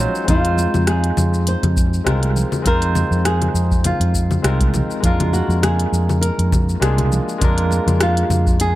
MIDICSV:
0, 0, Header, 1, 5, 480
1, 0, Start_track
1, 0, Tempo, 594059
1, 229, Time_signature, 4, 2, 24, 8
1, 7072, End_track
2, 0, Start_track
2, 0, Title_t, "Nylon-string guitar"
2, 0, Program_c, 0, 24
2, 0, Note_on_c, 0, 73, 103
2, 101, Note_off_c, 0, 73, 0
2, 240, Note_on_c, 0, 65, 88
2, 682, Note_off_c, 0, 65, 0
2, 718, Note_on_c, 0, 68, 90
2, 1199, Note_on_c, 0, 72, 90
2, 1208, Note_off_c, 0, 68, 0
2, 1882, Note_off_c, 0, 72, 0
2, 2159, Note_on_c, 0, 70, 115
2, 2628, Note_off_c, 0, 70, 0
2, 2631, Note_on_c, 0, 68, 91
2, 3116, Note_off_c, 0, 68, 0
2, 3119, Note_on_c, 0, 65, 78
2, 3802, Note_off_c, 0, 65, 0
2, 4078, Note_on_c, 0, 65, 88
2, 4304, Note_off_c, 0, 65, 0
2, 4308, Note_on_c, 0, 66, 83
2, 4531, Note_off_c, 0, 66, 0
2, 4546, Note_on_c, 0, 68, 91
2, 4995, Note_off_c, 0, 68, 0
2, 5021, Note_on_c, 0, 70, 104
2, 5712, Note_off_c, 0, 70, 0
2, 6484, Note_on_c, 0, 65, 92
2, 6954, Note_off_c, 0, 65, 0
2, 6957, Note_on_c, 0, 68, 113
2, 7072, Note_off_c, 0, 68, 0
2, 7072, End_track
3, 0, Start_track
3, 0, Title_t, "Tine electric piano"
3, 0, Program_c, 1, 4
3, 0, Control_c, 1, 64, 127
3, 0, Note_on_c, 1, 54, 93
3, 0, Note_on_c, 1, 61, 85
3, 0, Note_on_c, 1, 63, 80
3, 0, Note_on_c, 1, 65, 84
3, 1, Note_on_c, 1, 72, 101
3, 196, Note_off_c, 1, 54, 0
3, 196, Note_on_c, 1, 56, 96
3, 199, Note_off_c, 1, 61, 0
3, 203, Note_off_c, 1, 63, 0
3, 206, Note_off_c, 1, 65, 0
3, 209, Note_off_c, 1, 72, 0
3, 210, Note_on_c, 1, 60, 89
3, 224, Note_on_c, 1, 63, 83
3, 235, Note_on_c, 1, 65, 85
3, 240, Control_c, 1, 64, 0
3, 249, Note_on_c, 1, 72, 97
3, 364, Control_c, 1, 64, 127
3, 1626, Note_off_c, 1, 56, 0
3, 1633, Note_off_c, 1, 60, 0
3, 1641, Note_off_c, 1, 63, 0
3, 1646, Note_off_c, 1, 65, 0
3, 1650, Note_on_c, 1, 56, 88
3, 1653, Note_off_c, 1, 72, 0
3, 1654, Note_on_c, 1, 60, 78
3, 1662, Note_on_c, 1, 63, 73
3, 1667, Note_on_c, 1, 65, 77
3, 1672, Note_on_c, 1, 70, 93
3, 2107, Note_off_c, 1, 56, 0
3, 2115, Note_off_c, 1, 60, 0
3, 2117, Note_on_c, 1, 56, 89
3, 2120, Note_off_c, 1, 63, 0
3, 2122, Note_off_c, 1, 65, 0
3, 2124, Note_off_c, 1, 70, 0
3, 2130, Note_on_c, 1, 60, 85
3, 2139, Note_on_c, 1, 63, 79
3, 2154, Note_on_c, 1, 65, 88
3, 2164, Note_on_c, 1, 72, 107
3, 3547, Note_off_c, 1, 56, 0
3, 3553, Note_off_c, 1, 60, 0
3, 3558, Note_off_c, 1, 63, 0
3, 3566, Note_off_c, 1, 65, 0
3, 3571, Note_off_c, 1, 72, 0
3, 3572, Note_on_c, 1, 56, 84
3, 3577, Note_on_c, 1, 60, 78
3, 3584, Note_on_c, 1, 63, 81
3, 3592, Note_on_c, 1, 65, 82
3, 3596, Note_on_c, 1, 70, 97
3, 4035, Note_off_c, 1, 56, 0
3, 4037, Note_off_c, 1, 60, 0
3, 4040, Note_off_c, 1, 63, 0
3, 4043, Note_on_c, 1, 56, 95
3, 4044, Note_off_c, 1, 65, 0
3, 4047, Note_off_c, 1, 70, 0
3, 4056, Note_on_c, 1, 58, 84
3, 4068, Note_on_c, 1, 62, 87
3, 4079, Control_c, 1, 64, 0
3, 4081, Note_on_c, 1, 65, 82
3, 4093, Note_on_c, 1, 70, 99
3, 4222, Control_c, 1, 64, 127
3, 5470, Note_off_c, 1, 56, 0
3, 5477, Note_off_c, 1, 58, 0
3, 5483, Note_off_c, 1, 62, 0
3, 5489, Note_off_c, 1, 65, 0
3, 5495, Note_off_c, 1, 70, 0
3, 5495, Note_on_c, 1, 56, 90
3, 5500, Note_on_c, 1, 58, 83
3, 5505, Note_on_c, 1, 62, 79
3, 5512, Note_on_c, 1, 65, 82
3, 5521, Note_on_c, 1, 68, 96
3, 5956, Note_off_c, 1, 56, 0
3, 5959, Note_off_c, 1, 58, 0
3, 5961, Note_off_c, 1, 62, 0
3, 5965, Note_off_c, 1, 65, 0
3, 5965, Note_on_c, 1, 56, 94
3, 5969, Note_off_c, 1, 68, 0
3, 5978, Note_on_c, 1, 58, 90
3, 5991, Note_on_c, 1, 62, 83
3, 6004, Note_on_c, 1, 65, 87
3, 6015, Note_on_c, 1, 70, 107
3, 7072, Note_off_c, 1, 56, 0
3, 7072, Note_off_c, 1, 58, 0
3, 7072, Note_off_c, 1, 62, 0
3, 7072, Note_off_c, 1, 65, 0
3, 7072, Note_off_c, 1, 70, 0
3, 7072, End_track
4, 0, Start_track
4, 0, Title_t, "Fretless electric bass"
4, 0, Program_c, 2, 35
4, 228, Note_on_c, 2, 41, 91
4, 527, Note_off_c, 2, 41, 0
4, 602, Note_on_c, 2, 41, 86
4, 890, Note_off_c, 2, 41, 0
4, 947, Note_on_c, 2, 41, 84
4, 1247, Note_off_c, 2, 41, 0
4, 1317, Note_on_c, 2, 41, 96
4, 1607, Note_off_c, 2, 41, 0
4, 1665, Note_on_c, 2, 36, 81
4, 1966, Note_off_c, 2, 36, 0
4, 2145, Note_on_c, 2, 41, 96
4, 2446, Note_off_c, 2, 41, 0
4, 2512, Note_on_c, 2, 41, 86
4, 2805, Note_off_c, 2, 41, 0
4, 2862, Note_on_c, 2, 41, 81
4, 3164, Note_off_c, 2, 41, 0
4, 3232, Note_on_c, 2, 41, 103
4, 3524, Note_off_c, 2, 41, 0
4, 3588, Note_on_c, 2, 36, 83
4, 3887, Note_off_c, 2, 36, 0
4, 4068, Note_on_c, 2, 41, 102
4, 4367, Note_off_c, 2, 41, 0
4, 4432, Note_on_c, 2, 41, 88
4, 4725, Note_off_c, 2, 41, 0
4, 4786, Note_on_c, 2, 41, 85
4, 5086, Note_off_c, 2, 41, 0
4, 5159, Note_on_c, 2, 41, 96
4, 5448, Note_off_c, 2, 41, 0
4, 5505, Note_on_c, 2, 36, 86
4, 5806, Note_off_c, 2, 36, 0
4, 5989, Note_on_c, 2, 41, 92
4, 6288, Note_off_c, 2, 41, 0
4, 6356, Note_on_c, 2, 41, 88
4, 6646, Note_off_c, 2, 41, 0
4, 6703, Note_on_c, 2, 41, 86
4, 7072, Note_off_c, 2, 41, 0
4, 7072, End_track
5, 0, Start_track
5, 0, Title_t, "Drums"
5, 122, Note_on_c, 9, 82, 44
5, 203, Note_off_c, 9, 82, 0
5, 227, Note_on_c, 9, 42, 61
5, 227, Note_on_c, 9, 64, 70
5, 228, Note_off_c, 9, 64, 0
5, 228, Note_on_c, 9, 36, 111
5, 228, Note_on_c, 9, 64, 67
5, 231, Note_on_c, 9, 82, 32
5, 308, Note_off_c, 9, 42, 0
5, 309, Note_off_c, 9, 36, 0
5, 309, Note_off_c, 9, 64, 0
5, 311, Note_off_c, 9, 82, 0
5, 361, Note_on_c, 9, 42, 37
5, 442, Note_off_c, 9, 42, 0
5, 467, Note_on_c, 9, 63, 81
5, 470, Note_on_c, 9, 82, 73
5, 547, Note_off_c, 9, 63, 0
5, 551, Note_off_c, 9, 82, 0
5, 599, Note_on_c, 9, 64, 80
5, 602, Note_on_c, 9, 82, 43
5, 680, Note_off_c, 9, 64, 0
5, 683, Note_off_c, 9, 82, 0
5, 705, Note_on_c, 9, 37, 86
5, 705, Note_on_c, 9, 42, 56
5, 708, Note_on_c, 9, 82, 30
5, 786, Note_off_c, 9, 37, 0
5, 786, Note_off_c, 9, 42, 0
5, 789, Note_off_c, 9, 82, 0
5, 838, Note_on_c, 9, 42, 38
5, 919, Note_off_c, 9, 42, 0
5, 946, Note_on_c, 9, 64, 79
5, 950, Note_on_c, 9, 82, 76
5, 1027, Note_off_c, 9, 64, 0
5, 1031, Note_off_c, 9, 82, 0
5, 1081, Note_on_c, 9, 82, 46
5, 1162, Note_off_c, 9, 82, 0
5, 1187, Note_on_c, 9, 42, 61
5, 1190, Note_on_c, 9, 82, 34
5, 1268, Note_off_c, 9, 42, 0
5, 1271, Note_off_c, 9, 82, 0
5, 1320, Note_on_c, 9, 42, 38
5, 1320, Note_on_c, 9, 64, 74
5, 1401, Note_off_c, 9, 42, 0
5, 1401, Note_off_c, 9, 64, 0
5, 1428, Note_on_c, 9, 36, 99
5, 1430, Note_on_c, 9, 82, 78
5, 1509, Note_off_c, 9, 36, 0
5, 1511, Note_off_c, 9, 82, 0
5, 1564, Note_on_c, 9, 82, 41
5, 1644, Note_off_c, 9, 82, 0
5, 1669, Note_on_c, 9, 37, 93
5, 1669, Note_on_c, 9, 42, 58
5, 1669, Note_on_c, 9, 64, 68
5, 1673, Note_on_c, 9, 82, 32
5, 1750, Note_off_c, 9, 37, 0
5, 1750, Note_off_c, 9, 42, 0
5, 1750, Note_off_c, 9, 64, 0
5, 1754, Note_off_c, 9, 82, 0
5, 1800, Note_on_c, 9, 42, 42
5, 1800, Note_on_c, 9, 63, 66
5, 1881, Note_off_c, 9, 42, 0
5, 1881, Note_off_c, 9, 63, 0
5, 1909, Note_on_c, 9, 64, 74
5, 1910, Note_on_c, 9, 82, 69
5, 1989, Note_off_c, 9, 64, 0
5, 1990, Note_off_c, 9, 82, 0
5, 2037, Note_on_c, 9, 64, 79
5, 2040, Note_on_c, 9, 82, 45
5, 2118, Note_off_c, 9, 64, 0
5, 2121, Note_off_c, 9, 82, 0
5, 2147, Note_on_c, 9, 36, 104
5, 2147, Note_on_c, 9, 42, 63
5, 2147, Note_on_c, 9, 64, 74
5, 2150, Note_on_c, 9, 82, 29
5, 2227, Note_off_c, 9, 42, 0
5, 2227, Note_off_c, 9, 64, 0
5, 2228, Note_off_c, 9, 36, 0
5, 2231, Note_off_c, 9, 82, 0
5, 2278, Note_on_c, 9, 42, 40
5, 2359, Note_off_c, 9, 42, 0
5, 2386, Note_on_c, 9, 64, 79
5, 2387, Note_on_c, 9, 63, 73
5, 2390, Note_on_c, 9, 82, 71
5, 2467, Note_off_c, 9, 64, 0
5, 2468, Note_off_c, 9, 63, 0
5, 2470, Note_off_c, 9, 82, 0
5, 2522, Note_on_c, 9, 82, 41
5, 2603, Note_off_c, 9, 82, 0
5, 2628, Note_on_c, 9, 37, 92
5, 2628, Note_on_c, 9, 42, 62
5, 2632, Note_on_c, 9, 82, 31
5, 2709, Note_off_c, 9, 37, 0
5, 2709, Note_off_c, 9, 42, 0
5, 2713, Note_off_c, 9, 82, 0
5, 2760, Note_on_c, 9, 42, 38
5, 2760, Note_on_c, 9, 64, 72
5, 2841, Note_off_c, 9, 42, 0
5, 2841, Note_off_c, 9, 64, 0
5, 2871, Note_on_c, 9, 82, 78
5, 2952, Note_off_c, 9, 82, 0
5, 3000, Note_on_c, 9, 36, 91
5, 3003, Note_on_c, 9, 82, 42
5, 3081, Note_off_c, 9, 36, 0
5, 3083, Note_off_c, 9, 82, 0
5, 3106, Note_on_c, 9, 42, 69
5, 3106, Note_on_c, 9, 64, 75
5, 3110, Note_on_c, 9, 82, 32
5, 3187, Note_off_c, 9, 42, 0
5, 3187, Note_off_c, 9, 64, 0
5, 3190, Note_off_c, 9, 82, 0
5, 3239, Note_on_c, 9, 42, 43
5, 3320, Note_off_c, 9, 42, 0
5, 3348, Note_on_c, 9, 36, 52
5, 3350, Note_on_c, 9, 82, 78
5, 3429, Note_off_c, 9, 36, 0
5, 3431, Note_off_c, 9, 82, 0
5, 3480, Note_on_c, 9, 64, 77
5, 3484, Note_on_c, 9, 82, 39
5, 3561, Note_off_c, 9, 64, 0
5, 3564, Note_off_c, 9, 82, 0
5, 3591, Note_on_c, 9, 37, 89
5, 3591, Note_on_c, 9, 42, 64
5, 3594, Note_on_c, 9, 82, 29
5, 3671, Note_off_c, 9, 37, 0
5, 3671, Note_off_c, 9, 42, 0
5, 3675, Note_off_c, 9, 82, 0
5, 3721, Note_on_c, 9, 36, 94
5, 3722, Note_on_c, 9, 42, 45
5, 3725, Note_on_c, 9, 63, 58
5, 3802, Note_off_c, 9, 36, 0
5, 3803, Note_off_c, 9, 42, 0
5, 3806, Note_off_c, 9, 63, 0
5, 3827, Note_on_c, 9, 64, 74
5, 3831, Note_on_c, 9, 82, 69
5, 3832, Note_off_c, 9, 64, 0
5, 3832, Note_on_c, 9, 64, 75
5, 3912, Note_off_c, 9, 64, 0
5, 3912, Note_off_c, 9, 82, 0
5, 3964, Note_on_c, 9, 82, 44
5, 4045, Note_off_c, 9, 82, 0
5, 4063, Note_on_c, 9, 64, 75
5, 4069, Note_on_c, 9, 36, 101
5, 4070, Note_on_c, 9, 42, 64
5, 4073, Note_on_c, 9, 82, 31
5, 4144, Note_off_c, 9, 64, 0
5, 4150, Note_off_c, 9, 36, 0
5, 4150, Note_off_c, 9, 42, 0
5, 4154, Note_off_c, 9, 82, 0
5, 4202, Note_on_c, 9, 42, 41
5, 4202, Note_on_c, 9, 64, 82
5, 4283, Note_off_c, 9, 42, 0
5, 4283, Note_off_c, 9, 64, 0
5, 4307, Note_on_c, 9, 63, 71
5, 4313, Note_on_c, 9, 82, 70
5, 4387, Note_off_c, 9, 63, 0
5, 4393, Note_off_c, 9, 82, 0
5, 4446, Note_on_c, 9, 82, 39
5, 4526, Note_off_c, 9, 82, 0
5, 4551, Note_on_c, 9, 37, 91
5, 4551, Note_on_c, 9, 42, 68
5, 4551, Note_on_c, 9, 64, 80
5, 4555, Note_on_c, 9, 82, 30
5, 4632, Note_off_c, 9, 37, 0
5, 4632, Note_off_c, 9, 42, 0
5, 4632, Note_off_c, 9, 64, 0
5, 4636, Note_off_c, 9, 82, 0
5, 4682, Note_on_c, 9, 42, 41
5, 4763, Note_off_c, 9, 42, 0
5, 4796, Note_on_c, 9, 82, 72
5, 4877, Note_off_c, 9, 82, 0
5, 4924, Note_on_c, 9, 64, 75
5, 4927, Note_on_c, 9, 82, 41
5, 5005, Note_off_c, 9, 64, 0
5, 5008, Note_off_c, 9, 82, 0
5, 5031, Note_on_c, 9, 42, 70
5, 5034, Note_on_c, 9, 82, 31
5, 5111, Note_off_c, 9, 42, 0
5, 5115, Note_off_c, 9, 82, 0
5, 5164, Note_on_c, 9, 42, 45
5, 5245, Note_off_c, 9, 42, 0
5, 5270, Note_on_c, 9, 36, 94
5, 5272, Note_on_c, 9, 64, 79
5, 5275, Note_on_c, 9, 82, 68
5, 5351, Note_off_c, 9, 36, 0
5, 5353, Note_off_c, 9, 64, 0
5, 5356, Note_off_c, 9, 82, 0
5, 5406, Note_on_c, 9, 82, 40
5, 5487, Note_off_c, 9, 82, 0
5, 5513, Note_on_c, 9, 37, 93
5, 5513, Note_on_c, 9, 42, 65
5, 5516, Note_on_c, 9, 82, 32
5, 5594, Note_off_c, 9, 37, 0
5, 5594, Note_off_c, 9, 42, 0
5, 5597, Note_off_c, 9, 82, 0
5, 5643, Note_on_c, 9, 42, 43
5, 5643, Note_on_c, 9, 64, 78
5, 5646, Note_on_c, 9, 63, 60
5, 5723, Note_off_c, 9, 42, 0
5, 5723, Note_off_c, 9, 64, 0
5, 5727, Note_off_c, 9, 63, 0
5, 5752, Note_on_c, 9, 64, 78
5, 5754, Note_on_c, 9, 82, 72
5, 5833, Note_off_c, 9, 64, 0
5, 5835, Note_off_c, 9, 82, 0
5, 5888, Note_on_c, 9, 82, 42
5, 5969, Note_off_c, 9, 82, 0
5, 5987, Note_on_c, 9, 64, 78
5, 5990, Note_on_c, 9, 36, 118
5, 5991, Note_off_c, 9, 64, 0
5, 5991, Note_on_c, 9, 42, 67
5, 5991, Note_on_c, 9, 64, 79
5, 5995, Note_on_c, 9, 82, 31
5, 6071, Note_off_c, 9, 36, 0
5, 6072, Note_off_c, 9, 42, 0
5, 6072, Note_off_c, 9, 64, 0
5, 6076, Note_off_c, 9, 82, 0
5, 6122, Note_on_c, 9, 42, 41
5, 6203, Note_off_c, 9, 42, 0
5, 6228, Note_on_c, 9, 63, 76
5, 6236, Note_on_c, 9, 82, 72
5, 6308, Note_off_c, 9, 63, 0
5, 6317, Note_off_c, 9, 82, 0
5, 6365, Note_on_c, 9, 42, 33
5, 6365, Note_on_c, 9, 64, 81
5, 6368, Note_on_c, 9, 82, 41
5, 6445, Note_off_c, 9, 42, 0
5, 6445, Note_off_c, 9, 64, 0
5, 6449, Note_off_c, 9, 82, 0
5, 6468, Note_on_c, 9, 37, 100
5, 6468, Note_on_c, 9, 42, 65
5, 6472, Note_on_c, 9, 82, 33
5, 6549, Note_off_c, 9, 37, 0
5, 6549, Note_off_c, 9, 42, 0
5, 6552, Note_off_c, 9, 82, 0
5, 6603, Note_on_c, 9, 42, 40
5, 6683, Note_off_c, 9, 42, 0
5, 6709, Note_on_c, 9, 64, 79
5, 6712, Note_on_c, 9, 82, 76
5, 6790, Note_off_c, 9, 64, 0
5, 6793, Note_off_c, 9, 82, 0
5, 6842, Note_on_c, 9, 36, 102
5, 6844, Note_on_c, 9, 82, 43
5, 6923, Note_off_c, 9, 36, 0
5, 6924, Note_off_c, 9, 82, 0
5, 6947, Note_on_c, 9, 42, 74
5, 6951, Note_on_c, 9, 82, 31
5, 7028, Note_off_c, 9, 42, 0
5, 7031, Note_off_c, 9, 82, 0
5, 7072, End_track
0, 0, End_of_file